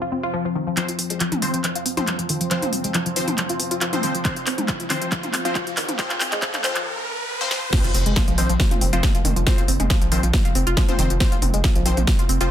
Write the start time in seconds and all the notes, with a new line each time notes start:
Already playing: F3 C4
0.02 F4
0.12 C4
0.23 F4
0.34 F3
0.45 F3
0.55 D#3
0.67 F3
0.77 F3 C4 C5, clap, closed hi-hat, riser
0.89 F4, closed hi-hat
0.99 C4, open hi-hat
1.10 G#3, closed hi-hat
1.20 F3, clap, closed hi-hat
1.32 F3, closed hi-hat, mid tom
1.42 D#3 F3 C4 C5, open hi-hat
1.54 F3, closed hi-hat
1.64 F3, clap, closed hi-hat
1.75 F4, closed hi-hat
1.86 C4, open hi-hat
1.97 F3 C4 F4 C5, closed hi-hat, mid tom
2.07 F3, clap, closed hi-hat
2.19 F3, closed hi-hat
2.29 D#3, open hi-hat
2.41 F3, closed hi-hat
2.51 F3 C4 C5, clap, closed hi-hat
2.62 F4, closed hi-hat, mid tom
2.73 C4, open hi-hat
2.84 G#3, closed hi-hat
2.94 F3, clap, closed hi-hat
3.06 F3, closed hi-hat
3.16 D#3 F3 C4 C5, open hi-hat
3.28 F3, closed hi-hat, mid tom
3.38 F3, clap, closed hi-hat
3.49 F4, closed hi-hat
3.60 C4, open hi-hat
3.71 F4, closed hi-hat
3.81 F3, clap, closed hi-hat
3.93 F3 C4 C5, closed hi-hat, mid tom
4.03 D#3 F3 C4 C5, open hi-hat
4.15 F3, closed hi-hat
4.25 F3 C4 C5, kick, clap, closed hi-hat
4.36 F4, closed hi-hat
4.47 C4, clap, open hi-hat
4.58 G#3, closed hi-hat, mid tom
4.68 F3, kick, clap, closed hi-hat
4.80 F3, closed hi-hat
4.90 D#3 F3 C4 C5, clap, open hi-hat
5.02 F3, closed hi-hat
5.12 F3, kick, clap, closed hi-hat
5.23 F4, closed hi-hat, mid tom
5.34 C4, clap, open hi-hat
5.45 F3 C4 F4 C5, closed hi-hat
5.55 F3, kick, clap, closed hi-hat
5.67 F3, closed hi-hat
5.77 D#3, clap, open hi-hat
5.89 F3, closed hi-hat, mid tom
5.99 F3 C4 C5, kick, clap, closed hi-hat
6.10 F4, clap, closed hi-hat
6.20 C4, clap, open hi-hat
6.32 G#3, clap, closed hi-hat
6.42 F3, kick, clap, closed hi-hat
6.54 F3, clap, closed hi-hat, mid tom
6.64 D#3 F3 C4 C5, clap, open hi-hat
6.76 F3, clap, closed hi-hat
7.41 F3 C4 C5
7.51 F3 C4 C5, snare
7.73 F3 C4 C5, kick, snare, closed hi-hat, crash, impact
7.84 F1 F4, closed hi-hat
7.94 F1 C4, open hi-hat
8.06 F1 G#3, closed hi-hat
8.16 F3, kick, snare, closed hi-hat, mid tom
8.28 A#1 F3, closed hi-hat
8.38 A#1 D#3 F3 C4 C5, open hi-hat
8.49 A#1 F3, closed hi-hat
8.60 F3, kick, snare, closed hi-hat
8.71 F1 F4, closed hi-hat, mid tom
8.81 F1 C4, open hi-hat
8.93 F1 F3 C4 F4 C5, closed hi-hat
9.03 F3, kick, snare, closed hi-hat
9.15 F1 F3, closed hi-hat
9.25 F1 D#3, open hi-hat, mid tom
9.36 F1 F3, closed hi-hat
9.46 F3 C4 C5, kick, snare, closed hi-hat
9.58 F1 F4, closed hi-hat
9.68 F#1 C4, open hi-hat
9.80 F1 G#3, closed hi-hat, mid tom
9.90 F3, kick, snare, closed hi-hat
10.02 A#1 F3, closed hi-hat
10.12 A#1 D#3 F3 C4 C5, open hi-hat
10.23 A#1 F3, closed hi-hat
10.33 F3, kick, snare, closed hi-hat, mid tom
10.45 F1 F4, closed hi-hat
10.55 F1 C4, open hi-hat
10.67 F1 F4, closed hi-hat
10.77 F3, kick, snare, closed hi-hat
10.88 F1 F3 C4 C5, closed hi-hat, mid tom
10.99 F1 D#3 F3 C4 C5, open hi-hat
11.10 F1 F3, closed hi-hat
11.20 F3 C4 C5, kick, snare, closed hi-hat
11.32 F1 F4, closed hi-hat
11.42 F1 C4, open hi-hat, mid tom
11.54 F1 G#3, closed hi-hat
11.64 F3, kick, snare, closed hi-hat
11.75 A#1 F3, closed hi-hat
11.86 A#1 D#3 F3 C4 C5, open hi-hat
11.97 A#1 F3, closed hi-hat, mid tom
12.07 F3, kick, snare, closed hi-hat
12.19 F1 F4, closed hi-hat
12.29 F1 C4, open hi-hat
12.41 F1 F3 C4 F4 C5, closed hi-hat